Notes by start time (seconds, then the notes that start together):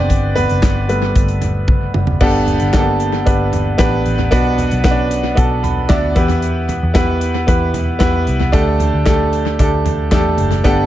Already playing: G3 A3 B3 C4 D4 G4 B4 C5 D5 G5
0.10 G1, kick, closed hi-hat
0.35 B3 B4, closed hi-hat, floor tom
0.49 F#1, closed hi-hat
0.62 G1, kick, snare, clap, closed hi-hat
0.88 G3 A3 B3 B4, closed hi-hat
1.16 G1, kick, closed hi-hat
1.28 closed hi-hat
1.42 closed hi-hat, floor tom
1.68 kick, high tom
1.94 F#1, mid tom
2.07 floor tom
2.21 G1 G2 B3 D4 G4 A4, kick, crash
2.47 closed hi-hat, floor tom
2.60 G1, closed hi-hat
2.73 A#3 D4 G4 A4, kick, snare, clap, closed hi-hat
2.79 B3
3.00 closed hi-hat
3.26 G1 B3 D4 G4 B4, kick, closed hi-hat
3.53 closed hi-hat, floor tom
3.78 A1 B3 D4 G4 B4, kick, snare, clap, closed hi-hat
4.06 A1, closed hi-hat
4.19 floor tom
4.31 B1 B2 B3 D4 F#4 B4, kick, closed hi-hat
4.58 closed hi-hat, floor tom
4.71 B1, closed hi-hat
4.84 B3 C#4 F#4 B4, kick, snare, clap, closed hi-hat
4.91 D4
5.11 closed hi-hat
5.35 B1 B3 D4 F#4 A4, kick, closed hi-hat
5.63 B5, closed hi-hat, floor tom
5.89 D2 B3 D4 F#4 D5 E5, kick, snare, clap, closed hi-hat
6.15 E2 E3 B3 E4 G4 B4, kick, closed hi-hat
6.29 closed hi-hat, floor tom
6.42 closed hi-hat
6.69 closed hi-hat, floor tom
6.83 E2
6.94 B3 E4 G4 B4, kick, snare, clap, closed hi-hat
7.21 closed hi-hat
7.47 E2 B3 E4 G4 B4, kick, closed hi-hat
7.74 closed hi-hat, floor tom
7.99 E2 B3 E4 G4 B4, kick, snare, clap, closed hi-hat
8.27 C2, closed hi-hat
8.40 floor tom
8.52 D2 D3 A3 D4 G4 A4, kick, closed hi-hat
8.80 closed hi-hat, floor tom
8.93 D2
9.05 A3 D4 G4 A4, kick, snare, clap, closed hi-hat
9.33 closed hi-hat
9.59 D2 A3 D4 G4 A4, kick, closed hi-hat
9.86 closed hi-hat, floor tom
10.11 E2 A3 D4 G4 A4, kick, snare, clap, closed hi-hat
10.38 F#1, closed hi-hat, floor tom
10.51 closed hi-hat, floor tom
10.64 G1 G2 B3 D4 G4 A4, kick, closed hi-hat